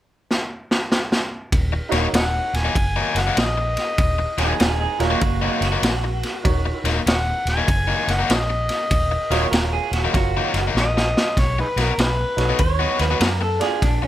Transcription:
0.31 snare
0.71 snare
0.92 snare
1.12 snare
1.52 D#1, kick, ride
1.73 muted overdriven electric guitar stroke
1.89 D#1 D#3 F#3 A#3 D#4 F#4 A#4 C#5, ride
1.93 snare
2.13 D#1 C#5 D#5 F#5, muted overdriven electric guitar stroke, snare, ride
2.53 D#1 G#5, snare, ride
2.65 D#3 F#3 A#3 D#4
2.75 F#1, muted overdriven electric guitar stroke, kick, ride
2.96 D#3 F#3 A#3 D#4
3.15 F#1 F#5, snare, ride
3.27 D#3 F#3 A#3 D#4
3.37 A#1 D#5, snare, ride
3.58 muted overdriven electric guitar stroke
3.77 snare, ride
3.98 D#1, kick, ride
4.19 muted overdriven electric guitar stroke
4.38 D#1 D#3 F#3 A#3 D#4 G#4, snare, ride
4.60 D#1 D#4 G#4, muted overdriven electric guitar stroke, snare, ride
4.80 D#4 G#4
4.99 D#1 A#3 F4 F#4 A#4 C#5, snare, ride
5.10 D#3 F#3 A#3 D#4
5.21 F#1 A#3 F#4, muted overdriven electric guitar stroke, kick, ride
5.42 D#3 F#3 A#3 D#4 F#4
5.61 F#1 F#4, snare, ride
5.72 D#3 F#3 A#3 D#4
5.83 A#1, snare, ride
6.04 muted overdriven electric guitar stroke
6.23 snare, ride
6.44 D#1 D#4 F#4 A#4 C#5, kick, ride
6.66 muted overdriven electric guitar stroke
6.84 D#1 D#3 F#3 A#3 D#4, snare, ride
7.06 D#1 C#5 D#5 F#5, muted overdriven electric guitar stroke, snare, ride
7.45 D#1, snare, ride
7.49 G#5
7.57 D#3 F#3 A#3 D#4
7.68 F#1, muted overdriven electric guitar stroke, kick, ride
7.88 D#3 F#3 A#3 D#4
8.08 F#1 F#5, snare, ride
8.19 D#3 F#3 A#3 D#4
8.30 A#1 D#5, snare, ride
8.50 muted overdriven electric guitar stroke
8.69 snare, ride
8.91 D#1, kick, ride
9.11 muted overdriven electric guitar stroke
9.30 D#1 D#3 F#3 A#3 D#4 F4 F#4 A#4 C#5, snare, ride
9.51 D#1 A#4, muted overdriven electric guitar stroke, snare, ride
9.73 G#4
9.91 D#1 F#4, snare, ride
10.05 D#3 F#3 A#3 D#4
10.13 F#1 F4 F#4 A#4 C#5, muted overdriven electric guitar stroke, kick, snare, ride
10.37 D#3 F#3 A#3 D#4
10.54 F#1, snare, ride
10.67 D#3 F#3 A#3 D#4
10.75 A#1 D#5, snare
10.97 muted overdriven electric guitar stroke, snare
11.17 snare
11.37 B1 C#5, kick, snare, ride
11.59 D#4 G#4 B4, muted overdriven electric guitar stroke
11.76 B1 F#3 B3 D#4 F#4, snare, ride
11.81 A#4
11.98 B1 D#4 G#4 B4, muted overdriven electric guitar stroke, snare, ride
12.37 B1 D#4 F#4 A4 C#5, snare, ride
12.49 F#3 B3 D#4 F#4
12.59 D#2 C#5, muted overdriven electric guitar stroke, kick, ride
12.79 F#3 B3 D#4 F#4
12.99 D#2 B4, snare, ride
13.11 F#3 B3 D#4 F#4
13.20 F#2 A#4, snare, ride
13.41 A4, muted overdriven electric guitar stroke
13.59 D4 F4 G#4 D5, snare, ride
13.82 A#1 D4, kick, snare, ride
14.02 muted overdriven electric guitar stroke

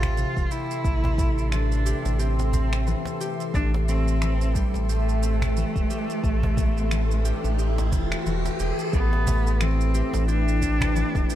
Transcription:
Already playing: A1 E3 A3 C4 F4 G4 A4 E5 C6
0.03 finger snap, cajon bass, shaker
0.17 C3, shaker
0.37 E1, kick, shaker
0.51 E4 G4, shaker
0.71 shaker
0.84 A1 A3, kick, shaker
1.04 cajon bass, cajon slap
1.18 A3, kick, cajon bass, shaker
1.38 shaker
1.52 E3 D4, finger snap, shaker
1.72 shaker
1.86 G4, shaker
2.05 A1, cajon slap, shaker
2.19 C4 G4, shaker
2.39 cajon slap, shaker
2.53 C4, cajon bass, shaker
2.73 finger snap, shaker
2.87 E3, shaker
3.05 cajon slap, shaker
3.21 G4, shaker
3.40 shaker
3.54 A1 A3 D4, kick, riser, shaker
3.74 cajon slap
3.88 A3 C4, shaker
4.08 shaker
4.22 E3, finger snap, shaker
4.41 shaker
4.55 G3 G4, kick, shaker
4.74 A1, cajon slap, shaker
4.89 A3 G4, shaker
5.09 shaker
5.23 C4, shaker
5.42 finger snap, cajon bass, shaker
5.56 E3, shaker
5.76 E1, kick, shaker
5.90 G4, shaker
6.10 shaker
6.24 A1 A3, kick, shaker
6.43 cajon bass, cajon slap
6.57 A3, kick, cajon bass, cajon slap, shaker
6.77 shaker
6.91 E3, finger snap, shaker
7.11 shaker
7.25 G4, shaker
7.44 A1, cajon slap, shaker
7.59 G4, shaker
7.78 cajon slap, shaker
7.92 E1 C4, kick, cajon bass, shaker
8.12 finger snap, shaker
8.26 E1 E3, shaker
8.46 cajon slap, shaker
8.60 E1 G4, shaker
8.79 shaker
8.93 A1 A3 B3 E4 B4, kick, shaker
9.13 cajon slap
9.27 A3, cajon bass, shaker
9.47 shaker
9.61 E3 C4, finger snap, shaker
9.81 shaker
9.94 G4, shaker
10.14 A1, cajon slap, shaker
10.28 D4 G4, shaker
10.48 shaker
10.62 C4, kick, shaker
10.81 finger snap, cajon bass, shaker
10.95 E3, shaker
11.15 E1, kick, cajon slap, shaker
11.30 G4, shaker

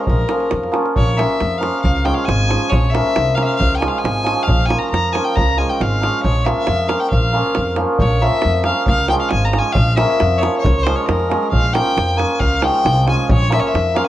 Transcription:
Already playing: F3 G#3
0.05 A#4, davul low
0.09 A#1
0.29 F3 A#3 C#4 F4, davul high
0.40 davul high
0.51 F2, davul high
0.63 davul high
0.72 F3 A#3 C#4 F4, davul high
0.86 davul high
0.96 A#1 C#5, davul low
1.09 davul high
1.17 F3 A#3 C#4 F4 E5, davul high
1.30 davul high
1.40 F2, davul high
1.58 F3 A#3 C#4 F4 F5
1.63 davul high
1.82 C#2 F5, davul low
1.97 davul high
2.04 F3 G#3 C#4 F4 G5, davul high
2.14 F5, davul high
2.25 G#1 G#5, davul high
2.49 F3 G#3 C#4 F4, davul high
2.69 A#1 C#5, davul low
2.84 davul high
2.91 F3 A#3 E5
2.95 C#4 F4, davul high
3.06 davul high
3.16 C2, davul high
3.35 F3 A#3 C#4 F4 F5, davul high
3.43 E5 F5
3.55 F5
3.60 C#2, davul low
3.72 G5, davul high
3.79 F3 G#3 C#4 F4 G#5, davul high
3.88 F5
3.95 G#5, davul high
4.04 G#1, davul high
4.17 davul high
4.24 F3 G#3 C#4 F4, davul high
4.39 davul high
4.43 F5
4.48 A#1, davul low
4.61 davul high
4.66 F3 A#3 G#5
4.70 C#4 F4, davul high
4.79 A#5
4.84 davul high
4.90 F2 A#5
4.94 davul high
5.13 F3 A#3 C#4 F4 G#5, davul high
5.24 G5
5.36 C#2 A#5, davul low
5.49 davul high
5.57 F3 G#3 C#4 F4 G#5
5.69 G5, davul high
5.80 G#1 F5, davul high
6.01 F3 G#3 C#4 F4, davul high
6.23 A#1 C#5, davul low
6.44 F3 A#3 C#4 F4 E5, davul high
6.58 davul high
6.67 F2, davul high
6.87 F3 A#3 C#4 F4 F5, davul high
7.00 G5
7.10 A#1 F5, davul low
7.33 F3 A#3 C#4 F4
7.46 davul high
7.55 F2, davul high
7.67 davul high
7.76 F3 A#3 C#4 F4, davul high
7.99 A#1 C#5, davul low
8.10 davul high
8.21 F3 A#3 C#4 F4 E5
8.32 davul high
8.42 F2, davul high
8.64 F3 A#3 C#4 F4 F5, davul high
8.86 C#2 F5, davul low
8.98 davul high
9.08 F3 G#3 C#4 F4 G5, davul high
9.21 F5, davul high
9.29 G#1 G#5, davul high
9.45 A#5
9.53 F3 G#3 C#4 F4, davul high
9.59 G#5
9.72 A#1 F5, davul low
9.96 F3 A#3 C#4 F4 E5, davul high
10.10 davul high
10.20 F2, davul high
10.38 F3 A#3 C#5
10.42 C#4 F4, davul high
10.59 C#5
10.64 C#2, davul low
10.77 davul high
10.83 F3 G#3 C5, davul high
10.87 C#4 F4
10.96 C#5
11.06 F2 A#4, davul high
11.20 davul high
11.29 F3 G#3 C#4 F4, davul high
11.43 davul high
11.51 A#1 F5, davul low
11.65 davul high
11.73 F3 A#3 C#4 F4 G5, davul high
11.87 davul high
11.97 F2, davul high
12.16 F3 A#3 C#4 F4 G#5, davul high
12.39 C#2 F5, davul low
12.53 davul high
12.62 F3 G#3 C#4 F4 G5, davul high
12.75 davul high
12.85 C2, davul high
13.05 F3 G#3 C#4 F4 G#5, davul high
13.29 A#1 C#5, davul low
13.41 davul high
13.50 F3 A#3 C#4 F4 E5, davul high
13.60 C#5
13.65 E5, davul high
13.74 F2, davul high
13.94 F3 A#3 C#4 F4 F5, davul high

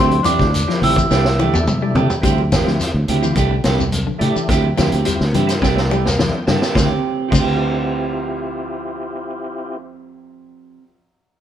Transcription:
Already playing: D2 D3 F3 C4 E4 G4 C6
0.11 closed hi-hat, high conga
0.23 E3 F3 C4 D4 E4 G4 D6, closed hi-hat, high conga, shekere
0.39 D2 C4 E4 F4 G4, kick, snare, shekere
0.54 closed hi-hat, high conga, shekere
0.68 F3 C4 E4 F4 G4, snare
0.82 A1 F3 C4 E4 G4 E6, open hi-hat, low conga, shekere
0.96 E3, kick, closed hi-hat, shekere
1.10 C2 E3 A3 D4 G4, snare, high conga, shekere
1.25 snare
1.39 E3 A3 D4 G4, high conga, shekere
1.53 E2 A3 D4 E4 G4, high tom, shekere
1.67 mid tom, high conga, shekere
1.81 G3 A3 D4 E4 G4
1.95 C3 A3 D4 G4, floor tom, low conga, shekere
2.10 floor tom, shekere
2.22 D2 G3 C4 E4 F4 G4, muted clean electric guitar stroke, kick, closed hi-hat, shekere
2.38 high conga
2.52 A1 F3 C4 E4 G4, snare, closed hi-hat, high conga, shekere
2.64 D2 F3 C4 E4 F4 G4, snare
2.68 shekere
2.80 snare, closed hi-hat, shekere
2.94 D2
3.08 D2 F3 C4 E4 G4, closed hi-hat, low conga, shekere
3.22 E3 C4 E4 F4 G4, shekere
3.35 C2 E3 A3 D4 G4, kick, closed hi-hat, high conga, shekere
3.51 D3
3.64 C2 E3 A3 D4 G4, snare, closed hi-hat, high conga, shekere
3.79 C3, shekere
3.92 closed hi-hat, high conga, shekere
4.07 D3
4.18 A2 E3 A3 D4 E4 G4, closed hi-hat, low conga, shekere
4.36 E3, muted fingered electric bass stroke, shekere
4.49 D2 F3 C4 E4 G4, kick, snare, closed hi-hat, shekere
4.63 high conga
4.77 D2 F3 C4 E4 G4, snare, closed hi-hat, high conga, shekere
4.92 D2 C4 G4, closed hi-hat, shekere
5.05 G3 C4 E4 F4 G4, closed hi-hat, high conga, shekere
5.20 D2, snare
5.33 G2 E3 F3 C4 E4 G4, closed hi-hat, low conga, shekere
5.47 C4 E4 F4 A4, snare, closed hi-hat, shekere
5.62 C2 C3 E3 A3 D4 G4, kick, snare, shekere
5.75 A3 D4 E4 G4, snare
5.90 E3 G3 A3 G4 D5, high conga, shekere
6.05 F5, snare, shekere
6.18 E3 A3 D4 E4 G4 G5, snare, high conga, shekere
6.47 G2 D3 E3 A3 D4 G4 A5, snare, low conga, shekere
6.61 A3 D4 E4 G4 A4, snare, shekere
6.71 F3 C4 E4 F4 G4
6.75 D2 D3 C4, kick, snare, low conga, shekere
6.83 G4
7.28 D2 F3 C4 E4 F4 G4, kick
7.33 D3 C4, crash, low conga, shekere
7.40 G4

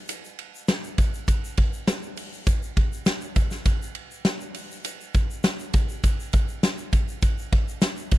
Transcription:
0.09 hi-hat pedal, ride, shaker
0.24 shaker
0.39 ride
0.55 shaker
0.68 snare, ride, shaker
0.84 shaker
0.98 kick, ride, shaker
1.14 shaker
1.28 kick, ride, shaker
1.45 shaker
1.57 kick, ride
1.73 shaker
1.87 snare, ride, shaker
2.03 shaker
2.17 open hi-hat, ride, shaker
2.33 shaker
2.47 kick, hi-hat pedal, ride, shaker
2.63 shaker
2.77 kick, ride
2.93 shaker
3.06 snare, ride, shaker
3.21 shaker
3.36 kick, ride, shaker
3.51 snare, shaker
3.65 kick, ride, shaker
3.82 shaker
3.95 ride
4.11 shaker
4.25 snare, ride, shaker
4.41 shaker
4.54 open hi-hat, ride, shaker
4.71 shaker
4.85 hi-hat pedal, ride, shaker
5.01 shaker
5.14 kick, ride, shaker
5.31 shaker
5.44 snare, ride, shaker
5.59 shaker
5.73 kick, ride, shaker
5.89 shaker
6.04 kick, ride, shaker
6.20 shaker
6.33 kick, ride, shaker
6.48 shaker
6.63 snare, ride, shaker
6.78 shaker
6.93 kick, ride, shaker
7.08 shaker
7.22 kick, ride, shaker
7.38 shaker
7.52 kick, ride
7.68 shaker
7.82 snare, ride, shaker
7.97 shaker
8.11 kick, ride, shaker

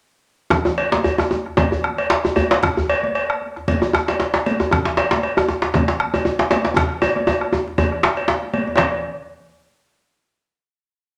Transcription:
0.50 bombo rim, bombo low, djembe tone, djembe bass, low conga
0.65 djembe tone
0.78 bombo rim, cowbell, high conga
0.92 djembe slap, high conga
1.04 cowbell, djembe bass
1.18 bombo rim, djembe tone
1.31 djembe tone, high conga
1.45 bombo rim, djembe slap, djembe tone
1.57 bombo low, cowbell, djembe slap, high conga, djembe bass, low conga
1.72 djembe bass
1.84 bombo rim
1.98 cowbell, djembe slap, high conga
2.10 djembe slap
2.25 bombo rim, djembe tone
2.36 cowbell, high conga, djembe bass
2.51 djembe slap, high conga, djembe tone
2.63 bombo rim, bombo low, djembe tone, low conga, djembe bass
2.77 djembe bass
2.89 bombo rim, cowbell, high conga
3.03 djembe slap, high conga
3.15 cowbell
3.30 bombo rim
3.41 djembe slap, high conga
3.56 bombo rim, djembe slap, djembe tone
3.68 bombo low, cowbell, high conga, low conga, djembe bass
3.82 djembe tone
3.93 bombo rim, djembe tone
4.08 cowbell, djembe slap, high conga
4.20 djembe slap
4.34 bombo rim, djembe slap
4.46 cowbell, high conga
4.59 djembe slap, djembe tone
4.71 bombo rim, bombo low, djembe tone, djembe bass, low conga
4.85 djembe slap
4.97 bombo rim, cowbell, djembe slap, high conga
5.11 djembe slap, high conga
5.23 cowbell
5.37 bombo rim, djembe tone
5.48 djembe tone, high conga
5.62 bombo rim, djembe slap
5.64 djembe slap, djembe tone
5.74 bombo low, cowbell, djembe slap, high conga, low conga, djembe bass
5.88 djembe slap
6.00 bombo rim
6.14 cowbell, djembe slap, djembe tone, high conga
6.25 djembe tone
6.39 bombo rim, djembe slap
6.51 cowbell, djembe slap, high conga
6.65 djembe slap, high conga, djembe tone
6.76 bombo rim, bombo low, djembe slap, djembe tone, low conga, djembe bass
6.91 bombo rim
7.02 cowbell, djembe tone, high conga
7.16 bombo rim, djembe slap, high conga
7.27 cowbell, djembe tone
7.41 bombo rim
7.53 djembe tone
7.68 djembe slap, djembe tone
7.78 bombo low, cowbell, djembe slap, high conga, djembe tone, low conga, djembe bass
7.92 bombo rim
8.03 bombo rim, djembe slap
8.17 cowbell, djembe slap, high conga
8.28 djembe slap
8.43 bombo rim, high conga
8.53 bombo rim, cowbell, djembe slap, high conga
8.67 djembe slap, djembe tone
8.77 bombo low, cowbell, djembe slap, djembe bass, low conga

